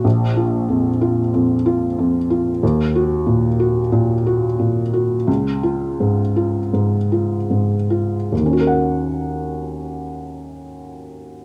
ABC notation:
X:1
M:4/4
L:1/8
Q:1/4=86
K:Ebm
V:1 name="Felt piano"
B,,, F F,, F F,, F F,, F | E,, G B,, G B,, G B,, G | D,, F A,, F A,, F A,, F | [E,,E,DGBg]8 |]